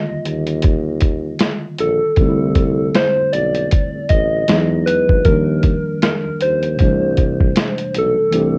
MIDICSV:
0, 0, Header, 1, 5, 480
1, 0, Start_track
1, 0, Tempo, 769231
1, 1357, Time_signature, 4, 2, 24, 8
1, 5356, End_track
2, 0, Start_track
2, 0, Title_t, "Soft synth lead"
2, 0, Program_c, 0, 80
2, 0, Note_on_c, 0, 75, 100
2, 379, Note_off_c, 0, 75, 0
2, 1126, Note_on_c, 0, 69, 115
2, 1847, Note_on_c, 0, 72, 114
2, 1856, Note_off_c, 0, 69, 0
2, 2076, Note_on_c, 0, 74, 111
2, 2085, Note_off_c, 0, 72, 0
2, 2554, Note_on_c, 0, 75, 114
2, 2563, Note_off_c, 0, 74, 0
2, 3032, Note_on_c, 0, 71, 111
2, 3042, Note_off_c, 0, 75, 0
2, 3275, Note_on_c, 0, 70, 98
2, 3284, Note_off_c, 0, 71, 0
2, 3756, Note_off_c, 0, 70, 0
2, 3761, Note_on_c, 0, 70, 105
2, 4006, Note_on_c, 0, 72, 100
2, 4016, Note_off_c, 0, 70, 0
2, 4962, Note_off_c, 0, 72, 0
2, 4982, Note_on_c, 0, 69, 104
2, 5356, Note_off_c, 0, 69, 0
2, 5356, End_track
3, 0, Start_track
3, 0, Title_t, "Tine electric piano"
3, 0, Program_c, 1, 4
3, 0, Control_c, 1, 64, 127
3, 0, Note_on_c, 1, 50, 53
3, 0, Note_on_c, 1, 51, 60
3, 0, Note_on_c, 1, 55, 53
3, 0, Note_on_c, 1, 58, 61
3, 0, Note_on_c, 1, 65, 71
3, 1334, Note_off_c, 1, 51, 0
3, 1336, Note_off_c, 1, 55, 0
3, 1340, Note_off_c, 1, 58, 0
3, 1345, Note_off_c, 1, 50, 0
3, 1349, Note_off_c, 1, 65, 0
3, 1357, Note_on_c, 1, 50, 59
3, 1364, Control_c, 1, 64, 0
3, 1366, Note_on_c, 1, 55, 55
3, 1375, Note_on_c, 1, 57, 54
3, 1379, Note_on_c, 1, 60, 58
3, 1389, Note_on_c, 1, 63, 57
3, 1420, Note_off_c, 1, 63, 0
3, 1431, Note_on_c, 1, 64, 71
3, 1458, Control_c, 1, 64, 127
3, 2772, Note_off_c, 1, 50, 0
3, 2777, Note_off_c, 1, 55, 0
3, 2781, Note_off_c, 1, 57, 0
3, 2783, Note_off_c, 1, 60, 0
3, 2796, Note_on_c, 1, 52, 67
3, 2800, Note_on_c, 1, 54, 62
3, 2802, Note_on_c, 1, 56, 54
3, 2807, Control_c, 1, 64, 0
3, 2807, Note_on_c, 1, 59, 56
3, 2809, Note_off_c, 1, 64, 0
3, 2812, Note_on_c, 1, 63, 79
3, 2912, Control_c, 1, 64, 127
3, 3271, Note_on_c, 1, 51, 64
3, 3276, Note_on_c, 1, 53, 53
3, 3277, Note_off_c, 1, 52, 0
3, 3279, Note_off_c, 1, 54, 0
3, 3280, Note_off_c, 1, 56, 0
3, 3282, Note_off_c, 1, 59, 0
3, 3285, Note_off_c, 1, 63, 0
3, 3285, Note_on_c, 1, 55, 64
3, 3286, Control_c, 1, 64, 0
3, 3292, Note_on_c, 1, 58, 55
3, 3304, Note_on_c, 1, 62, 73
3, 3384, Control_c, 1, 64, 127
3, 4215, Note_off_c, 1, 51, 0
3, 4217, Note_off_c, 1, 53, 0
3, 4219, Note_on_c, 1, 48, 57
3, 4222, Note_off_c, 1, 55, 0
3, 4226, Note_off_c, 1, 58, 0
3, 4226, Note_on_c, 1, 51, 38
3, 4232, Note_off_c, 1, 62, 0
3, 4234, Note_on_c, 1, 55, 58
3, 4243, Note_on_c, 1, 57, 50
3, 4245, Control_c, 1, 64, 0
3, 4253, Note_on_c, 1, 62, 61
3, 4268, Note_on_c, 1, 52, 52
3, 4278, Note_off_c, 1, 51, 0
3, 4354, Control_c, 1, 64, 127
3, 5169, Note_off_c, 1, 48, 0
3, 5176, Note_off_c, 1, 55, 0
3, 5178, Note_off_c, 1, 52, 0
3, 5181, Note_off_c, 1, 57, 0
3, 5185, Note_on_c, 1, 52, 70
3, 5186, Note_off_c, 1, 62, 0
3, 5191, Note_on_c, 1, 57, 57
3, 5200, Note_on_c, 1, 60, 51
3, 5206, Control_c, 1, 64, 0
3, 5209, Note_on_c, 1, 62, 62
3, 5216, Note_on_c, 1, 67, 68
3, 5320, Control_c, 1, 64, 127
3, 5356, Note_off_c, 1, 52, 0
3, 5356, Note_off_c, 1, 57, 0
3, 5356, Note_off_c, 1, 60, 0
3, 5356, Note_off_c, 1, 62, 0
3, 5356, Note_off_c, 1, 67, 0
3, 5356, End_track
4, 0, Start_track
4, 0, Title_t, "Tuba"
4, 0, Program_c, 2, 58
4, 55, Note_on_c, 2, 39, 42
4, 95, Note_off_c, 2, 39, 0
4, 157, Note_on_c, 2, 39, 92
4, 852, Note_off_c, 2, 39, 0
4, 1121, Note_on_c, 2, 34, 80
4, 1248, Note_off_c, 2, 34, 0
4, 1357, Note_on_c, 2, 36, 100
4, 1812, Note_off_c, 2, 36, 0
4, 1980, Note_on_c, 2, 35, 41
4, 2020, Note_off_c, 2, 35, 0
4, 2077, Note_on_c, 2, 35, 83
4, 2301, Note_off_c, 2, 35, 0
4, 2454, Note_on_c, 2, 33, 48
4, 2495, Note_off_c, 2, 33, 0
4, 2562, Note_on_c, 2, 33, 92
4, 2783, Note_off_c, 2, 33, 0
4, 2795, Note_on_c, 2, 40, 99
4, 3150, Note_off_c, 2, 40, 0
4, 3177, Note_on_c, 2, 34, 75
4, 3271, Note_off_c, 2, 34, 0
4, 3278, Note_on_c, 2, 39, 88
4, 3578, Note_off_c, 2, 39, 0
4, 3897, Note_on_c, 2, 39, 39
4, 3938, Note_off_c, 2, 39, 0
4, 3998, Note_on_c, 2, 39, 68
4, 4221, Note_off_c, 2, 39, 0
4, 4246, Note_on_c, 2, 36, 93
4, 4697, Note_off_c, 2, 36, 0
4, 4965, Note_on_c, 2, 35, 79
4, 5090, Note_off_c, 2, 35, 0
4, 5203, Note_on_c, 2, 36, 99
4, 5356, Note_off_c, 2, 36, 0
4, 5356, End_track
5, 0, Start_track
5, 0, Title_t, "Drums"
5, 159, Note_on_c, 9, 42, 68
5, 221, Note_off_c, 9, 42, 0
5, 292, Note_on_c, 9, 42, 41
5, 354, Note_off_c, 9, 42, 0
5, 389, Note_on_c, 9, 42, 79
5, 402, Note_on_c, 9, 36, 99
5, 452, Note_off_c, 9, 42, 0
5, 465, Note_off_c, 9, 36, 0
5, 629, Note_on_c, 9, 42, 62
5, 638, Note_on_c, 9, 36, 78
5, 691, Note_off_c, 9, 42, 0
5, 700, Note_off_c, 9, 36, 0
5, 869, Note_on_c, 9, 42, 82
5, 878, Note_on_c, 9, 38, 105
5, 932, Note_off_c, 9, 42, 0
5, 940, Note_off_c, 9, 38, 0
5, 1114, Note_on_c, 9, 42, 70
5, 1176, Note_off_c, 9, 42, 0
5, 1350, Note_on_c, 9, 42, 74
5, 1356, Note_on_c, 9, 36, 111
5, 1413, Note_off_c, 9, 42, 0
5, 1418, Note_off_c, 9, 36, 0
5, 1593, Note_on_c, 9, 42, 60
5, 1596, Note_on_c, 9, 36, 78
5, 1655, Note_off_c, 9, 42, 0
5, 1658, Note_off_c, 9, 36, 0
5, 1838, Note_on_c, 9, 42, 73
5, 1843, Note_on_c, 9, 38, 95
5, 1901, Note_off_c, 9, 42, 0
5, 1905, Note_off_c, 9, 38, 0
5, 2079, Note_on_c, 9, 42, 64
5, 2142, Note_off_c, 9, 42, 0
5, 2213, Note_on_c, 9, 42, 45
5, 2275, Note_off_c, 9, 42, 0
5, 2317, Note_on_c, 9, 42, 77
5, 2325, Note_on_c, 9, 36, 94
5, 2379, Note_off_c, 9, 42, 0
5, 2387, Note_off_c, 9, 36, 0
5, 2552, Note_on_c, 9, 42, 54
5, 2560, Note_on_c, 9, 36, 85
5, 2615, Note_off_c, 9, 42, 0
5, 2622, Note_off_c, 9, 36, 0
5, 2794, Note_on_c, 9, 42, 81
5, 2803, Note_on_c, 9, 38, 101
5, 2857, Note_off_c, 9, 42, 0
5, 2865, Note_off_c, 9, 38, 0
5, 3041, Note_on_c, 9, 42, 71
5, 3103, Note_off_c, 9, 42, 0
5, 3177, Note_on_c, 9, 36, 92
5, 3239, Note_off_c, 9, 36, 0
5, 3274, Note_on_c, 9, 42, 67
5, 3277, Note_on_c, 9, 36, 102
5, 3336, Note_off_c, 9, 42, 0
5, 3339, Note_off_c, 9, 36, 0
5, 3512, Note_on_c, 9, 42, 49
5, 3517, Note_on_c, 9, 36, 80
5, 3575, Note_off_c, 9, 42, 0
5, 3579, Note_off_c, 9, 36, 0
5, 3759, Note_on_c, 9, 42, 75
5, 3763, Note_on_c, 9, 38, 100
5, 3821, Note_off_c, 9, 42, 0
5, 3825, Note_off_c, 9, 38, 0
5, 3997, Note_on_c, 9, 42, 67
5, 4059, Note_off_c, 9, 42, 0
5, 4134, Note_on_c, 9, 42, 42
5, 4196, Note_off_c, 9, 42, 0
5, 4234, Note_on_c, 9, 42, 83
5, 4245, Note_on_c, 9, 36, 97
5, 4296, Note_off_c, 9, 42, 0
5, 4307, Note_off_c, 9, 36, 0
5, 4474, Note_on_c, 9, 42, 52
5, 4480, Note_on_c, 9, 36, 72
5, 4537, Note_off_c, 9, 42, 0
5, 4543, Note_off_c, 9, 36, 0
5, 4621, Note_on_c, 9, 36, 91
5, 4683, Note_off_c, 9, 36, 0
5, 4715, Note_on_c, 9, 42, 79
5, 4724, Note_on_c, 9, 38, 112
5, 4778, Note_off_c, 9, 42, 0
5, 4786, Note_off_c, 9, 38, 0
5, 4855, Note_on_c, 9, 42, 50
5, 4917, Note_off_c, 9, 42, 0
5, 4957, Note_on_c, 9, 42, 66
5, 5020, Note_off_c, 9, 42, 0
5, 5195, Note_on_c, 9, 42, 67
5, 5258, Note_off_c, 9, 42, 0
5, 5356, End_track
0, 0, End_of_file